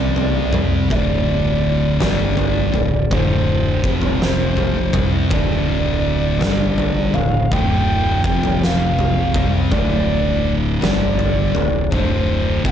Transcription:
0.00 0.88 C2 medium
0.00 0.91 C3 medium
0.00 0.91 G3 loud
0.00 0.91 C4 loud
0.00 0.74 D5 medium
0.16 floor tom medium
0.53 floor tom medium
0.53 mid tom medium
0.90 1.98 D1 medium
0.90 2.01 D2 medium
0.90 2.01 A2 loud
0.90 2.01 D3 loud
0.90 0.96 E5 medium
0.90 kick loud
0.90 floor tom medium
0.95 1.97 D5 loud
2.00 2.71 G1 medium
2.00 2.72 G2 medium
2.00 2.72 D3 medium
2.00 2.72 G3 loud
2.00 3.16 D5 medium
2.00 snare medium
2.00 floor tom medium
2.37 floor tom medium
2.74 3.09 D1 medium
2.74 3.05 D2 medium
2.74 3.05 A2 medium
2.74 floor tom medium
3.11 3.80 D1 medium
3.11 3.82 D2 medium
3.11 3.83 A2 loud
3.11 3.83 D3 loud
3.11 3.93 C5 medium
3.11 kick loud
3.11 floor tom medium
3.11 mid tom medium
3.84 4.90 F1 medium
3.84 4.92 F2 medium
3.84 4.92 C3 medium
3.84 4.93 F3 loud
3.84 kick loud
4.02 floor tom medium
4.22 5.10 C5 medium
4.22 snare medium
4.57 floor tom medium
4.93 5.29 C2 medium
4.93 5.30 C3 medium
4.93 5.31 G3 loud
4.93 5.31 C4 loud
4.93 kick loud
4.93 floor tom medium
4.93 mid tom medium
5.30 6.38 D1 medium
5.30 6.41 D2 medium
5.30 6.41 A2 loud
5.30 6.42 D3 loud
5.30 7.16 D5 loud
5.30 kick loud
5.30 floor tom medium
6.41 7.11 G1 loud
6.41 7.13 G2 medium
6.41 7.13 D3 medium
6.41 7.13 G3 medium
6.41 snare medium
6.41 floor tom medium
6.78 floor tom medium
7.14 7.50 D1 medium
7.14 7.45 D2 medium
7.14 7.45 A2 medium
7.14 7.54 F5 medium
7.14 floor tom medium
7.51 8.20 D1 medium
7.51 8.22 D2 medium
7.51 8.23 A2 medium
7.51 8.23 D3 loud
7.51 8.25 G5 loud
7.51 kick loud
7.51 floor tom medium
7.51 mid tom medium
8.24 9.31 F1 loud
8.24 9.33 F2 medium
8.24 9.33 C3 loud
8.24 9.33 F3 loud
8.24 8.66 G5 loud
8.24 kick medium
8.43 floor tom medium
8.63 9.55 F5 medium
8.63 snare medium
8.99 floor tom medium
9.34 9.70 C2 loud
9.34 9.71 C3 loud
9.34 9.72 G3 loud
9.34 9.72 C4 loud
9.34 kick medium
9.34 floor tom medium
9.34 mid tom medium
9.71 10.78 D1 loud
9.71 10.81 D2 loud
9.71 10.82 A2 loud
9.71 10.81 D3 loud
9.71 10.56 D5 loud
9.71 kick loud
9.71 floor tom medium
10.81 11.52 G1 medium
10.81 11.52 G2 medium
10.81 11.53 D3 medium
10.81 11.53 G3 loud
10.81 11.93 D5 medium
10.81 snare medium
10.81 floor tom medium
11.19 floor tom medium
11.55 11.90 D1 medium
11.55 11.85 D2 medium
11.55 11.85 A2 medium
11.55 floor tom medium
11.91 12.61 D1 medium
11.91 12.62 D2 loud
11.91 12.63 A2 loud
11.91 12.63 D3 loud
11.91 12.64 C5 medium
11.91 kick loud
11.91 floor tom medium
11.91 mid tom medium
12.64 12.71 F1 medium
12.64 12.71 F2 medium
12.64 12.71 C3 medium
12.64 12.71 F3 loud
12.64 12.70 G5 loud
12.64 kick loud

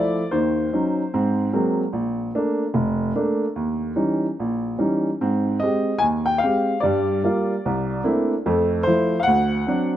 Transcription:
0.00 0.21 F3 soft
0.00 0.21 A3 soft
0.00 0.21 E4 soft
0.00 0.34 D5 medium
0.31 0.68 D#2 medium
0.31 0.68 D#3 medium
0.31 1.49 C5 medium
0.73 1.01 F#3 soft
0.73 1.01 C#4 soft
0.73 1.01 D#4 soft
1.14 1.48 G#2 medium
1.14 1.48 C4 medium
1.53 1.82 F#3 soft
1.53 1.82 G#3 soft
1.53 1.82 A#3 soft
1.53 1.82 C4 medium
1.93 2.29 A#1 medium
2.35 2.63 A3 soft
2.35 2.63 A#3 soft
2.35 2.63 D4 medium
2.74 3.10 F1 medium
3.16 3.44 A3 soft
3.16 3.44 A#3 soft
3.16 3.44 D4 soft
3.56 3.91 D#2 medium
3.96 4.25 E3 soft
3.96 4.25 G3 soft
3.96 4.25 C#4 soft
3.96 4.25 D#4 soft
4.40 4.75 A#1 medium
4.79 5.08 E3 soft
4.79 5.08 G3 soft
4.79 5.08 C#4 soft
4.79 5.09 D#4 soft
5.21 5.57 G#2 medium
5.21 5.57 C4 medium
5.60 5.91 G#3 soft
5.60 5.91 C4 soft
5.60 6.03 D#5 medium
5.64 5.92 G4 soft
5.98 6.38 D#2 medium
5.98 6.05 G#5 medium
6.26 6.43 G5 medium
6.38 6.79 F5 medium
6.44 6.72 G#3 soft
6.44 6.72 C4 soft
6.44 6.73 G4 soft
6.80 7.19 G2 medium
6.80 7.19 G3 medium
6.80 7.99 D5 medium
7.24 7.53 G3 soft
7.24 7.53 A#3 soft
7.24 7.53 F4 medium
7.66 8.00 C2 medium
8.04 8.33 A3 soft
8.04 8.33 A#3 soft
8.04 8.33 C4 soft
8.04 8.33 D4 soft
8.04 8.33 E4 medium
8.46 8.81 F2 medium
8.46 8.81 A3 medium
8.83 9.15 F3 soft
8.83 9.14 A3 soft
8.83 9.15 E4 medium
8.83 9.21 C5 medium
9.20 9.25 F5 medium
9.20 9.88 F#5 medium
9.27 9.62 D2 medium
9.67 9.95 F#3 soft
9.67 9.96 C4 soft
9.67 9.96 D4 soft

